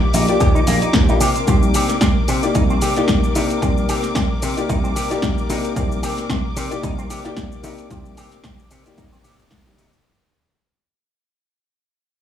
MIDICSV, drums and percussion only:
0, 0, Header, 1, 2, 480
1, 0, Start_track
1, 0, Tempo, 535714
1, 1324, Time_signature, 4, 2, 24, 8
1, 10940, End_track
2, 0, Start_track
2, 0, Title_t, "Drums"
2, 124, Note_on_c, 9, 46, 112
2, 125, Note_on_c, 9, 82, 76
2, 213, Note_off_c, 9, 46, 0
2, 214, Note_off_c, 9, 82, 0
2, 256, Note_on_c, 9, 42, 62
2, 257, Note_on_c, 9, 82, 33
2, 345, Note_off_c, 9, 42, 0
2, 346, Note_off_c, 9, 82, 0
2, 361, Note_on_c, 9, 42, 51
2, 362, Note_on_c, 9, 82, 42
2, 365, Note_on_c, 9, 36, 122
2, 451, Note_off_c, 9, 42, 0
2, 452, Note_off_c, 9, 82, 0
2, 454, Note_off_c, 9, 36, 0
2, 497, Note_on_c, 9, 82, 29
2, 587, Note_off_c, 9, 82, 0
2, 601, Note_on_c, 9, 46, 109
2, 602, Note_on_c, 9, 82, 76
2, 690, Note_off_c, 9, 46, 0
2, 691, Note_off_c, 9, 82, 0
2, 735, Note_on_c, 9, 42, 63
2, 736, Note_on_c, 9, 82, 33
2, 825, Note_off_c, 9, 42, 0
2, 826, Note_off_c, 9, 82, 0
2, 836, Note_on_c, 9, 38, 116
2, 841, Note_on_c, 9, 42, 49
2, 842, Note_on_c, 9, 82, 44
2, 845, Note_on_c, 9, 36, 127
2, 925, Note_off_c, 9, 38, 0
2, 931, Note_off_c, 9, 42, 0
2, 932, Note_off_c, 9, 82, 0
2, 934, Note_off_c, 9, 36, 0
2, 975, Note_on_c, 9, 82, 31
2, 1065, Note_off_c, 9, 82, 0
2, 1081, Note_on_c, 9, 46, 116
2, 1082, Note_on_c, 9, 82, 80
2, 1171, Note_off_c, 9, 46, 0
2, 1172, Note_off_c, 9, 82, 0
2, 1215, Note_on_c, 9, 42, 60
2, 1216, Note_on_c, 9, 82, 33
2, 1304, Note_off_c, 9, 42, 0
2, 1305, Note_off_c, 9, 82, 0
2, 1322, Note_on_c, 9, 42, 51
2, 1322, Note_on_c, 9, 82, 45
2, 1325, Note_on_c, 9, 36, 120
2, 1411, Note_off_c, 9, 42, 0
2, 1412, Note_off_c, 9, 82, 0
2, 1415, Note_off_c, 9, 36, 0
2, 1457, Note_on_c, 9, 82, 31
2, 1547, Note_off_c, 9, 82, 0
2, 1561, Note_on_c, 9, 46, 107
2, 1562, Note_on_c, 9, 82, 77
2, 1651, Note_off_c, 9, 46, 0
2, 1652, Note_off_c, 9, 82, 0
2, 1692, Note_on_c, 9, 38, 37
2, 1697, Note_on_c, 9, 42, 66
2, 1698, Note_on_c, 9, 82, 34
2, 1782, Note_off_c, 9, 38, 0
2, 1787, Note_off_c, 9, 42, 0
2, 1788, Note_off_c, 9, 82, 0
2, 1800, Note_on_c, 9, 38, 113
2, 1805, Note_on_c, 9, 36, 124
2, 1805, Note_on_c, 9, 42, 50
2, 1806, Note_on_c, 9, 82, 46
2, 1890, Note_off_c, 9, 38, 0
2, 1895, Note_off_c, 9, 36, 0
2, 1895, Note_off_c, 9, 42, 0
2, 1896, Note_off_c, 9, 82, 0
2, 2043, Note_on_c, 9, 46, 103
2, 2044, Note_on_c, 9, 82, 80
2, 2133, Note_off_c, 9, 46, 0
2, 2134, Note_off_c, 9, 82, 0
2, 2177, Note_on_c, 9, 42, 64
2, 2178, Note_on_c, 9, 82, 34
2, 2267, Note_off_c, 9, 42, 0
2, 2268, Note_off_c, 9, 82, 0
2, 2283, Note_on_c, 9, 42, 50
2, 2284, Note_on_c, 9, 82, 44
2, 2285, Note_on_c, 9, 36, 116
2, 2373, Note_off_c, 9, 42, 0
2, 2374, Note_off_c, 9, 82, 0
2, 2375, Note_off_c, 9, 36, 0
2, 2418, Note_on_c, 9, 82, 31
2, 2508, Note_off_c, 9, 82, 0
2, 2522, Note_on_c, 9, 46, 107
2, 2523, Note_on_c, 9, 82, 77
2, 2612, Note_off_c, 9, 46, 0
2, 2613, Note_off_c, 9, 82, 0
2, 2656, Note_on_c, 9, 42, 65
2, 2657, Note_on_c, 9, 82, 34
2, 2746, Note_off_c, 9, 42, 0
2, 2747, Note_off_c, 9, 82, 0
2, 2758, Note_on_c, 9, 38, 111
2, 2763, Note_on_c, 9, 42, 51
2, 2764, Note_on_c, 9, 82, 46
2, 2766, Note_on_c, 9, 36, 121
2, 2847, Note_off_c, 9, 38, 0
2, 2852, Note_off_c, 9, 42, 0
2, 2853, Note_off_c, 9, 82, 0
2, 2855, Note_off_c, 9, 36, 0
2, 2900, Note_on_c, 9, 82, 32
2, 2989, Note_off_c, 9, 82, 0
2, 3005, Note_on_c, 9, 46, 111
2, 3006, Note_on_c, 9, 82, 85
2, 3094, Note_off_c, 9, 46, 0
2, 3095, Note_off_c, 9, 82, 0
2, 3140, Note_on_c, 9, 42, 63
2, 3141, Note_on_c, 9, 82, 33
2, 3229, Note_off_c, 9, 42, 0
2, 3230, Note_off_c, 9, 82, 0
2, 3246, Note_on_c, 9, 36, 117
2, 3246, Note_on_c, 9, 42, 51
2, 3247, Note_on_c, 9, 82, 46
2, 3335, Note_off_c, 9, 36, 0
2, 3336, Note_off_c, 9, 42, 0
2, 3337, Note_off_c, 9, 82, 0
2, 3381, Note_on_c, 9, 82, 30
2, 3470, Note_off_c, 9, 82, 0
2, 3484, Note_on_c, 9, 46, 103
2, 3485, Note_on_c, 9, 82, 81
2, 3574, Note_off_c, 9, 46, 0
2, 3575, Note_off_c, 9, 82, 0
2, 3612, Note_on_c, 9, 38, 35
2, 3617, Note_on_c, 9, 42, 66
2, 3618, Note_on_c, 9, 82, 35
2, 3702, Note_off_c, 9, 38, 0
2, 3707, Note_off_c, 9, 42, 0
2, 3708, Note_off_c, 9, 82, 0
2, 3719, Note_on_c, 9, 38, 114
2, 3725, Note_on_c, 9, 42, 54
2, 3726, Note_on_c, 9, 36, 119
2, 3726, Note_on_c, 9, 82, 48
2, 3809, Note_off_c, 9, 38, 0
2, 3814, Note_off_c, 9, 42, 0
2, 3815, Note_off_c, 9, 36, 0
2, 3815, Note_off_c, 9, 82, 0
2, 3964, Note_on_c, 9, 46, 100
2, 3965, Note_on_c, 9, 82, 81
2, 4053, Note_off_c, 9, 46, 0
2, 4054, Note_off_c, 9, 82, 0
2, 4098, Note_on_c, 9, 42, 65
2, 4099, Note_on_c, 9, 82, 36
2, 4188, Note_off_c, 9, 42, 0
2, 4189, Note_off_c, 9, 82, 0
2, 4206, Note_on_c, 9, 36, 117
2, 4207, Note_on_c, 9, 42, 52
2, 4208, Note_on_c, 9, 82, 46
2, 4295, Note_off_c, 9, 36, 0
2, 4297, Note_off_c, 9, 42, 0
2, 4298, Note_off_c, 9, 82, 0
2, 4340, Note_on_c, 9, 82, 31
2, 4429, Note_off_c, 9, 82, 0
2, 4446, Note_on_c, 9, 46, 104
2, 4447, Note_on_c, 9, 82, 83
2, 4536, Note_off_c, 9, 46, 0
2, 4537, Note_off_c, 9, 82, 0
2, 4580, Note_on_c, 9, 42, 65
2, 4581, Note_on_c, 9, 82, 35
2, 4669, Note_off_c, 9, 42, 0
2, 4670, Note_off_c, 9, 82, 0
2, 4680, Note_on_c, 9, 38, 116
2, 4685, Note_on_c, 9, 36, 119
2, 4685, Note_on_c, 9, 42, 53
2, 4686, Note_on_c, 9, 82, 46
2, 4769, Note_off_c, 9, 38, 0
2, 4774, Note_off_c, 9, 42, 0
2, 4775, Note_off_c, 9, 36, 0
2, 4775, Note_off_c, 9, 82, 0
2, 4820, Note_on_c, 9, 82, 33
2, 4910, Note_off_c, 9, 82, 0
2, 4926, Note_on_c, 9, 46, 106
2, 4926, Note_on_c, 9, 82, 85
2, 5015, Note_off_c, 9, 46, 0
2, 5016, Note_off_c, 9, 82, 0
2, 5060, Note_on_c, 9, 42, 63
2, 5061, Note_on_c, 9, 82, 34
2, 5149, Note_off_c, 9, 42, 0
2, 5150, Note_off_c, 9, 82, 0
2, 5165, Note_on_c, 9, 36, 116
2, 5165, Note_on_c, 9, 42, 54
2, 5166, Note_on_c, 9, 82, 49
2, 5254, Note_off_c, 9, 36, 0
2, 5255, Note_off_c, 9, 42, 0
2, 5256, Note_off_c, 9, 82, 0
2, 5303, Note_on_c, 9, 82, 32
2, 5393, Note_off_c, 9, 82, 0
2, 5405, Note_on_c, 9, 46, 100
2, 5406, Note_on_c, 9, 82, 86
2, 5495, Note_off_c, 9, 46, 0
2, 5496, Note_off_c, 9, 82, 0
2, 5534, Note_on_c, 9, 38, 36
2, 5540, Note_on_c, 9, 42, 69
2, 5540, Note_on_c, 9, 82, 35
2, 5624, Note_off_c, 9, 38, 0
2, 5629, Note_off_c, 9, 42, 0
2, 5630, Note_off_c, 9, 82, 0
2, 5641, Note_on_c, 9, 38, 118
2, 5644, Note_on_c, 9, 36, 114
2, 5646, Note_on_c, 9, 42, 54
2, 5647, Note_on_c, 9, 82, 51
2, 5731, Note_off_c, 9, 38, 0
2, 5734, Note_off_c, 9, 36, 0
2, 5736, Note_off_c, 9, 42, 0
2, 5737, Note_off_c, 9, 82, 0
2, 5883, Note_on_c, 9, 46, 100
2, 5884, Note_on_c, 9, 82, 83
2, 5973, Note_off_c, 9, 46, 0
2, 5974, Note_off_c, 9, 82, 0
2, 6017, Note_on_c, 9, 42, 69
2, 6018, Note_on_c, 9, 82, 36
2, 6106, Note_off_c, 9, 42, 0
2, 6107, Note_off_c, 9, 82, 0
2, 6124, Note_on_c, 9, 36, 111
2, 6124, Note_on_c, 9, 42, 56
2, 6125, Note_on_c, 9, 82, 48
2, 6213, Note_off_c, 9, 36, 0
2, 6214, Note_off_c, 9, 42, 0
2, 6214, Note_off_c, 9, 82, 0
2, 6259, Note_on_c, 9, 82, 34
2, 6349, Note_off_c, 9, 82, 0
2, 6364, Note_on_c, 9, 46, 101
2, 6365, Note_on_c, 9, 82, 83
2, 6454, Note_off_c, 9, 46, 0
2, 6455, Note_off_c, 9, 82, 0
2, 6499, Note_on_c, 9, 42, 70
2, 6500, Note_on_c, 9, 82, 35
2, 6588, Note_off_c, 9, 42, 0
2, 6589, Note_off_c, 9, 82, 0
2, 6599, Note_on_c, 9, 38, 121
2, 6604, Note_on_c, 9, 36, 114
2, 6605, Note_on_c, 9, 42, 55
2, 6605, Note_on_c, 9, 82, 48
2, 6689, Note_off_c, 9, 38, 0
2, 6694, Note_off_c, 9, 36, 0
2, 6694, Note_off_c, 9, 42, 0
2, 6695, Note_off_c, 9, 82, 0
2, 6739, Note_on_c, 9, 82, 33
2, 6829, Note_off_c, 9, 82, 0
2, 6843, Note_on_c, 9, 46, 106
2, 6843, Note_on_c, 9, 82, 88
2, 6932, Note_off_c, 9, 46, 0
2, 6933, Note_off_c, 9, 82, 0
2, 6976, Note_on_c, 9, 42, 69
2, 6977, Note_on_c, 9, 82, 34
2, 7066, Note_off_c, 9, 42, 0
2, 7067, Note_off_c, 9, 82, 0
2, 7083, Note_on_c, 9, 42, 55
2, 7084, Note_on_c, 9, 82, 46
2, 7085, Note_on_c, 9, 36, 116
2, 7172, Note_off_c, 9, 42, 0
2, 7173, Note_off_c, 9, 82, 0
2, 7174, Note_off_c, 9, 36, 0
2, 7218, Note_on_c, 9, 82, 31
2, 7308, Note_off_c, 9, 82, 0
2, 7323, Note_on_c, 9, 46, 100
2, 7324, Note_on_c, 9, 82, 82
2, 7412, Note_off_c, 9, 46, 0
2, 7413, Note_off_c, 9, 82, 0
2, 7451, Note_on_c, 9, 38, 38
2, 7456, Note_on_c, 9, 42, 70
2, 7457, Note_on_c, 9, 82, 34
2, 7541, Note_off_c, 9, 38, 0
2, 7546, Note_off_c, 9, 42, 0
2, 7547, Note_off_c, 9, 82, 0
2, 7559, Note_on_c, 9, 38, 127
2, 7564, Note_on_c, 9, 42, 57
2, 7565, Note_on_c, 9, 36, 115
2, 7565, Note_on_c, 9, 82, 48
2, 7648, Note_off_c, 9, 38, 0
2, 7653, Note_off_c, 9, 42, 0
2, 7654, Note_off_c, 9, 82, 0
2, 7655, Note_off_c, 9, 36, 0
2, 7698, Note_on_c, 9, 82, 33
2, 7788, Note_off_c, 9, 82, 0
2, 7802, Note_on_c, 9, 46, 101
2, 7803, Note_on_c, 9, 82, 82
2, 7892, Note_off_c, 9, 46, 0
2, 7892, Note_off_c, 9, 82, 0
2, 7938, Note_on_c, 9, 42, 69
2, 7939, Note_on_c, 9, 82, 37
2, 8027, Note_off_c, 9, 42, 0
2, 8028, Note_off_c, 9, 82, 0
2, 8044, Note_on_c, 9, 42, 57
2, 8045, Note_on_c, 9, 36, 115
2, 8045, Note_on_c, 9, 82, 47
2, 8134, Note_off_c, 9, 42, 0
2, 8135, Note_off_c, 9, 36, 0
2, 8135, Note_off_c, 9, 82, 0
2, 8179, Note_on_c, 9, 82, 33
2, 8269, Note_off_c, 9, 82, 0
2, 8282, Note_on_c, 9, 46, 98
2, 8283, Note_on_c, 9, 82, 83
2, 8372, Note_off_c, 9, 46, 0
2, 8373, Note_off_c, 9, 82, 0
2, 8418, Note_on_c, 9, 42, 69
2, 8419, Note_on_c, 9, 82, 34
2, 8508, Note_off_c, 9, 42, 0
2, 8509, Note_off_c, 9, 82, 0
2, 8518, Note_on_c, 9, 38, 123
2, 8523, Note_on_c, 9, 42, 59
2, 8524, Note_on_c, 9, 82, 48
2, 8526, Note_on_c, 9, 36, 116
2, 8608, Note_off_c, 9, 38, 0
2, 8613, Note_off_c, 9, 42, 0
2, 8614, Note_off_c, 9, 82, 0
2, 8615, Note_off_c, 9, 36, 0
2, 8660, Note_on_c, 9, 82, 33
2, 8750, Note_off_c, 9, 82, 0
2, 8767, Note_on_c, 9, 46, 107
2, 8768, Note_on_c, 9, 82, 87
2, 8856, Note_off_c, 9, 46, 0
2, 8857, Note_off_c, 9, 82, 0
2, 8901, Note_on_c, 9, 42, 68
2, 8902, Note_on_c, 9, 82, 34
2, 8990, Note_off_c, 9, 42, 0
2, 8991, Note_off_c, 9, 82, 0
2, 10940, End_track
0, 0, End_of_file